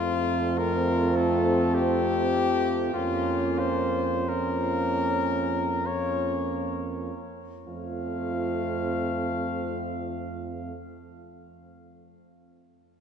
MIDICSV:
0, 0, Header, 1, 6, 480
1, 0, Start_track
1, 0, Key_signature, -1, "major"
1, 0, Tempo, 1147228
1, 729, Tempo, 1207243
1, 1209, Time_signature, 3, 2, 24, 8
1, 1209, Tempo, 1339286
1, 1689, Tempo, 1570681
1, 2169, Tempo, 1812689
1, 4061, End_track
2, 0, Start_track
2, 0, Title_t, "Flugelhorn"
2, 0, Program_c, 0, 56
2, 0, Note_on_c, 0, 65, 127
2, 245, Note_on_c, 0, 70, 125
2, 251, Note_off_c, 0, 65, 0
2, 487, Note_on_c, 0, 69, 110
2, 493, Note_off_c, 0, 70, 0
2, 730, Note_on_c, 0, 67, 127
2, 736, Note_off_c, 0, 69, 0
2, 1203, Note_off_c, 0, 67, 0
2, 1205, Note_on_c, 0, 65, 115
2, 1440, Note_on_c, 0, 72, 112
2, 1445, Note_off_c, 0, 65, 0
2, 1688, Note_on_c, 0, 70, 119
2, 1693, Note_off_c, 0, 72, 0
2, 2170, Note_on_c, 0, 73, 110
2, 2173, Note_off_c, 0, 70, 0
2, 2407, Note_off_c, 0, 73, 0
2, 2652, Note_on_c, 0, 77, 100
2, 3461, Note_off_c, 0, 77, 0
2, 4061, End_track
3, 0, Start_track
3, 0, Title_t, "French horn section"
3, 0, Program_c, 1, 60
3, 0, Note_on_c, 1, 65, 107
3, 1192, Note_off_c, 1, 65, 0
3, 1209, Note_on_c, 1, 65, 91
3, 1679, Note_off_c, 1, 65, 0
3, 1689, Note_on_c, 1, 65, 89
3, 2117, Note_off_c, 1, 65, 0
3, 2169, Note_on_c, 1, 65, 76
3, 2505, Note_off_c, 1, 65, 0
3, 2649, Note_on_c, 1, 65, 87
3, 3458, Note_off_c, 1, 65, 0
3, 4061, End_track
4, 0, Start_track
4, 0, Title_t, "Euphonium"
4, 0, Program_c, 2, 58
4, 0, Note_on_c, 2, 60, 111
4, 1195, Note_off_c, 2, 60, 0
4, 1208, Note_on_c, 2, 61, 99
4, 1679, Note_off_c, 2, 61, 0
4, 1685, Note_on_c, 2, 61, 98
4, 2157, Note_off_c, 2, 61, 0
4, 2166, Note_on_c, 2, 61, 87
4, 2504, Note_off_c, 2, 61, 0
4, 2649, Note_on_c, 2, 60, 86
4, 3459, Note_off_c, 2, 60, 0
4, 4061, End_track
5, 0, Start_track
5, 0, Title_t, "Trombone"
5, 0, Program_c, 3, 57
5, 0, Note_on_c, 3, 57, 99
5, 1195, Note_off_c, 3, 57, 0
5, 1207, Note_on_c, 3, 58, 98
5, 1678, Note_off_c, 3, 58, 0
5, 1687, Note_on_c, 3, 58, 92
5, 2158, Note_off_c, 3, 58, 0
5, 2166, Note_on_c, 3, 58, 84
5, 2504, Note_off_c, 3, 58, 0
5, 2651, Note_on_c, 3, 57, 89
5, 3460, Note_off_c, 3, 57, 0
5, 4061, End_track
6, 0, Start_track
6, 0, Title_t, "Tuba"
6, 0, Program_c, 4, 58
6, 0, Note_on_c, 4, 41, 111
6, 1192, Note_off_c, 4, 41, 0
6, 1206, Note_on_c, 4, 41, 97
6, 2500, Note_off_c, 4, 41, 0
6, 2649, Note_on_c, 4, 41, 84
6, 3458, Note_off_c, 4, 41, 0
6, 4061, End_track
0, 0, End_of_file